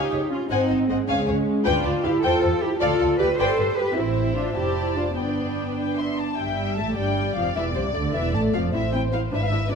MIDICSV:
0, 0, Header, 1, 6, 480
1, 0, Start_track
1, 0, Tempo, 385356
1, 634, Time_signature, 6, 3, 24, 8
1, 4950, Tempo, 401875
1, 8310, Tempo, 389864
1, 11959, End_track
2, 0, Start_track
2, 0, Title_t, "Violin section"
2, 0, Program_c, 0, 48
2, 0, Note_on_c, 0, 80, 59
2, 127, Note_off_c, 0, 80, 0
2, 143, Note_on_c, 0, 73, 42
2, 241, Note_off_c, 0, 73, 0
2, 629, Note_on_c, 0, 80, 57
2, 856, Note_off_c, 0, 80, 0
2, 871, Note_on_c, 0, 75, 42
2, 968, Note_off_c, 0, 75, 0
2, 1115, Note_on_c, 0, 78, 46
2, 1211, Note_off_c, 0, 78, 0
2, 1339, Note_on_c, 0, 80, 59
2, 1570, Note_off_c, 0, 80, 0
2, 1590, Note_on_c, 0, 73, 51
2, 1687, Note_off_c, 0, 73, 0
2, 2063, Note_on_c, 0, 79, 68
2, 2290, Note_off_c, 0, 79, 0
2, 2309, Note_on_c, 0, 74, 42
2, 2405, Note_off_c, 0, 74, 0
2, 2545, Note_on_c, 0, 77, 44
2, 2641, Note_off_c, 0, 77, 0
2, 2775, Note_on_c, 0, 79, 68
2, 3004, Note_off_c, 0, 79, 0
2, 3014, Note_on_c, 0, 72, 46
2, 3113, Note_off_c, 0, 72, 0
2, 3498, Note_on_c, 0, 77, 65
2, 3728, Note_off_c, 0, 77, 0
2, 3750, Note_on_c, 0, 69, 51
2, 3846, Note_off_c, 0, 69, 0
2, 3989, Note_on_c, 0, 74, 51
2, 4085, Note_off_c, 0, 74, 0
2, 4226, Note_on_c, 0, 79, 72
2, 4451, Note_off_c, 0, 79, 0
2, 4467, Note_on_c, 0, 71, 51
2, 4563, Note_off_c, 0, 71, 0
2, 4942, Note_on_c, 0, 76, 55
2, 5605, Note_off_c, 0, 76, 0
2, 5644, Note_on_c, 0, 81, 53
2, 6373, Note_on_c, 0, 79, 43
2, 6375, Note_off_c, 0, 81, 0
2, 7069, Note_off_c, 0, 79, 0
2, 7083, Note_on_c, 0, 79, 59
2, 7319, Note_off_c, 0, 79, 0
2, 7338, Note_on_c, 0, 84, 58
2, 7585, Note_on_c, 0, 81, 58
2, 7588, Note_off_c, 0, 84, 0
2, 7814, Note_on_c, 0, 79, 58
2, 7830, Note_off_c, 0, 81, 0
2, 8291, Note_on_c, 0, 81, 57
2, 8299, Note_off_c, 0, 79, 0
2, 8538, Note_off_c, 0, 81, 0
2, 8538, Note_on_c, 0, 79, 66
2, 9016, Note_on_c, 0, 77, 64
2, 9018, Note_off_c, 0, 79, 0
2, 9259, Note_on_c, 0, 76, 60
2, 9262, Note_off_c, 0, 77, 0
2, 9357, Note_off_c, 0, 76, 0
2, 9484, Note_on_c, 0, 72, 53
2, 9583, Note_off_c, 0, 72, 0
2, 9731, Note_on_c, 0, 74, 57
2, 9830, Note_off_c, 0, 74, 0
2, 9972, Note_on_c, 0, 76, 67
2, 10222, Note_off_c, 0, 76, 0
2, 10228, Note_on_c, 0, 81, 66
2, 10326, Note_off_c, 0, 81, 0
2, 10469, Note_on_c, 0, 77, 68
2, 10566, Note_off_c, 0, 77, 0
2, 10716, Note_on_c, 0, 76, 62
2, 10951, Note_off_c, 0, 76, 0
2, 10953, Note_on_c, 0, 79, 68
2, 11050, Note_off_c, 0, 79, 0
2, 11191, Note_on_c, 0, 77, 62
2, 11287, Note_off_c, 0, 77, 0
2, 11453, Note_on_c, 0, 76, 64
2, 11528, Note_off_c, 0, 76, 0
2, 11532, Note_on_c, 0, 77, 63
2, 11601, Note_on_c, 0, 76, 76
2, 11611, Note_off_c, 0, 77, 0
2, 11907, Note_off_c, 0, 76, 0
2, 11910, Note_on_c, 0, 74, 74
2, 11959, Note_off_c, 0, 74, 0
2, 11959, End_track
3, 0, Start_track
3, 0, Title_t, "Violin section"
3, 0, Program_c, 1, 48
3, 0, Note_on_c, 1, 73, 54
3, 0, Note_on_c, 1, 77, 53
3, 134, Note_off_c, 1, 77, 0
3, 136, Note_off_c, 1, 73, 0
3, 159, Note_on_c, 1, 73, 43
3, 160, Note_on_c, 1, 68, 42
3, 254, Note_off_c, 1, 68, 0
3, 254, Note_off_c, 1, 73, 0
3, 629, Note_on_c, 1, 78, 51
3, 635, Note_on_c, 1, 72, 55
3, 845, Note_off_c, 1, 72, 0
3, 856, Note_off_c, 1, 78, 0
3, 860, Note_on_c, 1, 72, 45
3, 863, Note_off_c, 1, 72, 0
3, 863, Note_on_c, 1, 72, 39
3, 962, Note_off_c, 1, 72, 0
3, 1115, Note_on_c, 1, 72, 48
3, 1116, Note_on_c, 1, 75, 49
3, 1211, Note_off_c, 1, 72, 0
3, 1212, Note_off_c, 1, 75, 0
3, 1339, Note_on_c, 1, 73, 58
3, 1343, Note_on_c, 1, 77, 66
3, 1561, Note_off_c, 1, 73, 0
3, 1572, Note_off_c, 1, 77, 0
3, 1576, Note_on_c, 1, 73, 49
3, 1580, Note_on_c, 1, 68, 50
3, 1676, Note_off_c, 1, 73, 0
3, 1679, Note_off_c, 1, 68, 0
3, 2050, Note_on_c, 1, 79, 68
3, 2053, Note_on_c, 1, 71, 73
3, 2283, Note_off_c, 1, 79, 0
3, 2284, Note_off_c, 1, 71, 0
3, 2296, Note_on_c, 1, 74, 43
3, 2299, Note_on_c, 1, 71, 44
3, 2395, Note_off_c, 1, 74, 0
3, 2397, Note_off_c, 1, 71, 0
3, 2540, Note_on_c, 1, 71, 48
3, 2542, Note_on_c, 1, 77, 49
3, 2638, Note_off_c, 1, 71, 0
3, 2639, Note_off_c, 1, 77, 0
3, 2781, Note_on_c, 1, 72, 73
3, 2781, Note_on_c, 1, 79, 73
3, 3007, Note_off_c, 1, 72, 0
3, 3007, Note_off_c, 1, 79, 0
3, 3031, Note_on_c, 1, 72, 51
3, 3127, Note_off_c, 1, 72, 0
3, 3499, Note_on_c, 1, 74, 64
3, 3502, Note_off_c, 1, 74, 0
3, 3502, Note_on_c, 1, 74, 66
3, 3713, Note_off_c, 1, 74, 0
3, 3728, Note_on_c, 1, 74, 51
3, 3736, Note_on_c, 1, 65, 45
3, 3827, Note_off_c, 1, 74, 0
3, 3835, Note_off_c, 1, 65, 0
3, 3972, Note_on_c, 1, 74, 49
3, 3976, Note_on_c, 1, 69, 51
3, 4071, Note_off_c, 1, 74, 0
3, 4075, Note_off_c, 1, 69, 0
3, 4223, Note_on_c, 1, 74, 60
3, 4229, Note_on_c, 1, 71, 70
3, 4445, Note_off_c, 1, 71, 0
3, 4449, Note_off_c, 1, 74, 0
3, 4460, Note_on_c, 1, 71, 48
3, 4463, Note_on_c, 1, 67, 47
3, 4558, Note_off_c, 1, 71, 0
3, 4561, Note_off_c, 1, 67, 0
3, 4927, Note_on_c, 1, 72, 52
3, 4932, Note_off_c, 1, 72, 0
3, 4932, Note_on_c, 1, 72, 53
3, 5600, Note_off_c, 1, 72, 0
3, 5644, Note_on_c, 1, 74, 47
3, 5647, Note_on_c, 1, 72, 51
3, 6361, Note_off_c, 1, 74, 0
3, 6362, Note_off_c, 1, 72, 0
3, 6392, Note_on_c, 1, 74, 41
3, 6396, Note_on_c, 1, 71, 42
3, 7051, Note_off_c, 1, 74, 0
3, 7066, Note_off_c, 1, 71, 0
3, 7109, Note_on_c, 1, 71, 48
3, 7333, Note_off_c, 1, 71, 0
3, 7342, Note_on_c, 1, 76, 43
3, 7590, Note_off_c, 1, 76, 0
3, 7599, Note_on_c, 1, 74, 37
3, 7825, Note_on_c, 1, 76, 54
3, 7837, Note_off_c, 1, 74, 0
3, 8499, Note_off_c, 1, 76, 0
3, 8553, Note_on_c, 1, 74, 62
3, 10713, Note_on_c, 1, 72, 58
3, 10718, Note_off_c, 1, 74, 0
3, 11418, Note_off_c, 1, 72, 0
3, 11427, Note_on_c, 1, 71, 60
3, 11959, Note_off_c, 1, 71, 0
3, 11959, End_track
4, 0, Start_track
4, 0, Title_t, "Cello section"
4, 0, Program_c, 2, 48
4, 0, Note_on_c, 2, 67, 65
4, 386, Note_on_c, 2, 65, 65
4, 388, Note_off_c, 2, 67, 0
4, 626, Note_off_c, 2, 65, 0
4, 632, Note_on_c, 2, 63, 70
4, 1105, Note_off_c, 2, 63, 0
4, 1117, Note_on_c, 2, 60, 69
4, 1346, Note_on_c, 2, 61, 70
4, 1352, Note_off_c, 2, 60, 0
4, 2055, Note_off_c, 2, 61, 0
4, 2059, Note_on_c, 2, 65, 80
4, 2533, Note_off_c, 2, 65, 0
4, 2544, Note_on_c, 2, 67, 73
4, 2777, Note_on_c, 2, 69, 81
4, 2786, Note_off_c, 2, 67, 0
4, 3253, Note_off_c, 2, 69, 0
4, 3255, Note_on_c, 2, 67, 80
4, 3498, Note_on_c, 2, 69, 86
4, 3503, Note_off_c, 2, 67, 0
4, 3975, Note_off_c, 2, 69, 0
4, 3982, Note_on_c, 2, 71, 83
4, 4211, Note_on_c, 2, 72, 80
4, 4221, Note_off_c, 2, 71, 0
4, 4689, Note_off_c, 2, 72, 0
4, 4693, Note_on_c, 2, 71, 82
4, 4941, Note_on_c, 2, 64, 75
4, 4942, Note_off_c, 2, 71, 0
4, 5403, Note_on_c, 2, 65, 68
4, 5414, Note_off_c, 2, 64, 0
4, 5649, Note_off_c, 2, 65, 0
4, 5652, Note_on_c, 2, 67, 68
4, 6126, Note_off_c, 2, 67, 0
4, 6137, Note_on_c, 2, 65, 60
4, 6233, Note_off_c, 2, 65, 0
4, 6375, Note_on_c, 2, 62, 58
4, 7565, Note_off_c, 2, 62, 0
4, 7835, Note_on_c, 2, 43, 52
4, 8276, Note_off_c, 2, 43, 0
4, 8310, Note_on_c, 2, 45, 58
4, 8553, Note_off_c, 2, 45, 0
4, 8560, Note_on_c, 2, 43, 57
4, 9029, Note_off_c, 2, 43, 0
4, 9034, Note_on_c, 2, 41, 54
4, 9271, Note_off_c, 2, 41, 0
4, 9279, Note_on_c, 2, 40, 59
4, 9514, Note_off_c, 2, 40, 0
4, 9516, Note_on_c, 2, 36, 53
4, 9758, Note_off_c, 2, 36, 0
4, 9761, Note_on_c, 2, 38, 51
4, 9997, Note_off_c, 2, 38, 0
4, 9999, Note_on_c, 2, 40, 59
4, 10233, Note_on_c, 2, 45, 59
4, 10236, Note_off_c, 2, 40, 0
4, 10476, Note_off_c, 2, 45, 0
4, 10483, Note_on_c, 2, 41, 57
4, 10710, Note_on_c, 2, 45, 56
4, 10715, Note_off_c, 2, 41, 0
4, 11346, Note_off_c, 2, 45, 0
4, 11429, Note_on_c, 2, 44, 55
4, 11959, Note_off_c, 2, 44, 0
4, 11959, End_track
5, 0, Start_track
5, 0, Title_t, "Viola section"
5, 0, Program_c, 3, 48
5, 0, Note_on_c, 3, 63, 53
5, 381, Note_off_c, 3, 63, 0
5, 386, Note_on_c, 3, 61, 62
5, 484, Note_off_c, 3, 61, 0
5, 623, Note_on_c, 3, 60, 62
5, 1101, Note_off_c, 3, 60, 0
5, 1107, Note_on_c, 3, 56, 58
5, 1335, Note_off_c, 3, 56, 0
5, 1350, Note_on_c, 3, 56, 65
5, 2057, Note_off_c, 3, 56, 0
5, 2061, Note_on_c, 3, 62, 73
5, 2543, Note_on_c, 3, 64, 72
5, 2544, Note_off_c, 3, 62, 0
5, 2781, Note_on_c, 3, 65, 73
5, 2785, Note_off_c, 3, 64, 0
5, 3256, Note_on_c, 3, 64, 67
5, 3265, Note_off_c, 3, 65, 0
5, 3355, Note_off_c, 3, 64, 0
5, 3499, Note_on_c, 3, 65, 83
5, 3975, Note_on_c, 3, 67, 76
5, 3976, Note_off_c, 3, 65, 0
5, 4074, Note_off_c, 3, 67, 0
5, 4220, Note_on_c, 3, 69, 72
5, 4694, Note_off_c, 3, 69, 0
5, 4695, Note_on_c, 3, 67, 70
5, 4937, Note_on_c, 3, 60, 66
5, 4943, Note_off_c, 3, 67, 0
5, 5412, Note_off_c, 3, 60, 0
5, 5412, Note_on_c, 3, 62, 64
5, 5649, Note_off_c, 3, 62, 0
5, 5651, Note_on_c, 3, 64, 57
5, 6125, Note_off_c, 3, 64, 0
5, 6128, Note_on_c, 3, 62, 52
5, 6369, Note_on_c, 3, 59, 50
5, 6377, Note_off_c, 3, 62, 0
5, 7562, Note_off_c, 3, 59, 0
5, 7833, Note_on_c, 3, 55, 53
5, 8275, Note_off_c, 3, 55, 0
5, 8306, Note_on_c, 3, 57, 61
5, 8542, Note_on_c, 3, 55, 55
5, 8551, Note_off_c, 3, 57, 0
5, 9020, Note_off_c, 3, 55, 0
5, 9028, Note_on_c, 3, 53, 54
5, 9126, Note_off_c, 3, 53, 0
5, 9268, Note_on_c, 3, 52, 61
5, 9366, Note_off_c, 3, 52, 0
5, 9504, Note_on_c, 3, 48, 51
5, 9747, Note_off_c, 3, 48, 0
5, 9749, Note_on_c, 3, 50, 55
5, 9991, Note_off_c, 3, 50, 0
5, 9994, Note_on_c, 3, 52, 60
5, 10238, Note_off_c, 3, 52, 0
5, 10239, Note_on_c, 3, 57, 60
5, 10469, Note_on_c, 3, 53, 59
5, 10474, Note_off_c, 3, 57, 0
5, 10702, Note_on_c, 3, 64, 51
5, 10704, Note_on_c, 3, 60, 50
5, 10713, Note_off_c, 3, 53, 0
5, 10801, Note_off_c, 3, 64, 0
5, 10802, Note_off_c, 3, 60, 0
5, 10951, Note_on_c, 3, 60, 44
5, 10954, Note_on_c, 3, 64, 42
5, 11047, Note_off_c, 3, 60, 0
5, 11050, Note_off_c, 3, 64, 0
5, 11189, Note_on_c, 3, 60, 46
5, 11190, Note_on_c, 3, 64, 44
5, 11286, Note_off_c, 3, 60, 0
5, 11286, Note_off_c, 3, 64, 0
5, 11425, Note_on_c, 3, 64, 43
5, 11429, Note_on_c, 3, 62, 43
5, 11523, Note_off_c, 3, 64, 0
5, 11525, Note_off_c, 3, 62, 0
5, 11666, Note_on_c, 3, 64, 45
5, 11668, Note_on_c, 3, 62, 47
5, 11762, Note_off_c, 3, 64, 0
5, 11764, Note_off_c, 3, 62, 0
5, 11902, Note_on_c, 3, 64, 46
5, 11905, Note_on_c, 3, 62, 47
5, 11959, Note_off_c, 3, 62, 0
5, 11959, Note_off_c, 3, 64, 0
5, 11959, End_track
6, 0, Start_track
6, 0, Title_t, "Double bass section"
6, 0, Program_c, 4, 48
6, 149, Note_on_c, 4, 37, 44
6, 246, Note_off_c, 4, 37, 0
6, 631, Note_on_c, 4, 32, 67
6, 728, Note_off_c, 4, 32, 0
6, 872, Note_on_c, 4, 32, 47
6, 969, Note_off_c, 4, 32, 0
6, 1111, Note_on_c, 4, 32, 47
6, 1208, Note_off_c, 4, 32, 0
6, 1352, Note_on_c, 4, 37, 67
6, 1449, Note_off_c, 4, 37, 0
6, 1593, Note_on_c, 4, 37, 48
6, 1689, Note_off_c, 4, 37, 0
6, 2073, Note_on_c, 4, 38, 70
6, 2168, Note_off_c, 4, 38, 0
6, 2301, Note_on_c, 4, 38, 51
6, 2399, Note_off_c, 4, 38, 0
6, 2550, Note_on_c, 4, 38, 55
6, 2645, Note_off_c, 4, 38, 0
6, 2793, Note_on_c, 4, 40, 73
6, 2888, Note_off_c, 4, 40, 0
6, 3034, Note_on_c, 4, 40, 49
6, 3129, Note_off_c, 4, 40, 0
6, 3508, Note_on_c, 4, 38, 69
6, 3605, Note_off_c, 4, 38, 0
6, 3749, Note_on_c, 4, 38, 51
6, 3846, Note_off_c, 4, 38, 0
6, 3985, Note_on_c, 4, 38, 51
6, 4082, Note_off_c, 4, 38, 0
6, 4229, Note_on_c, 4, 31, 69
6, 4325, Note_off_c, 4, 31, 0
6, 4454, Note_on_c, 4, 31, 51
6, 4553, Note_off_c, 4, 31, 0
6, 4947, Note_on_c, 4, 33, 61
6, 5607, Note_off_c, 4, 33, 0
6, 5656, Note_on_c, 4, 29, 52
6, 6382, Note_off_c, 4, 29, 0
6, 6388, Note_on_c, 4, 31, 45
6, 7596, Note_off_c, 4, 31, 0
6, 7841, Note_on_c, 4, 31, 52
6, 8280, Note_off_c, 4, 31, 0
6, 8322, Note_on_c, 4, 33, 58
6, 8555, Note_on_c, 4, 31, 59
6, 8559, Note_off_c, 4, 33, 0
6, 9027, Note_off_c, 4, 31, 0
6, 9036, Note_on_c, 4, 29, 52
6, 9272, Note_off_c, 4, 29, 0
6, 9281, Note_on_c, 4, 28, 58
6, 9515, Note_off_c, 4, 28, 0
6, 9522, Note_on_c, 4, 36, 52
6, 9758, Note_on_c, 4, 38, 54
6, 9761, Note_off_c, 4, 36, 0
6, 9995, Note_off_c, 4, 38, 0
6, 10004, Note_on_c, 4, 28, 60
6, 10238, Note_off_c, 4, 28, 0
6, 10249, Note_on_c, 4, 33, 56
6, 10484, Note_off_c, 4, 33, 0
6, 10488, Note_on_c, 4, 29, 54
6, 10717, Note_off_c, 4, 29, 0
6, 10730, Note_on_c, 4, 33, 56
6, 11356, Note_off_c, 4, 33, 0
6, 11445, Note_on_c, 4, 32, 58
6, 11959, Note_off_c, 4, 32, 0
6, 11959, End_track
0, 0, End_of_file